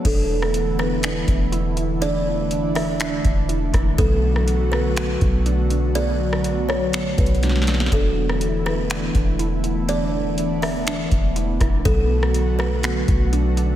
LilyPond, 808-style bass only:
\new Staff \with { instrumentName = "808-style bass" } { \clef bass \time 4/4 \key e \dorian \tempo 4 = 122 e,,2~ e,,8 e,,4.~ | e,,2~ e,,8 e,,4 e,,8 | b,,2~ b,,8 b,,4.~ | b,,2~ b,,8 b,,4. |
e,,2~ e,,8 e,,4.~ | e,,2~ e,,8 e,,4 e,,8 | b,,2~ b,,8 b,,4. | }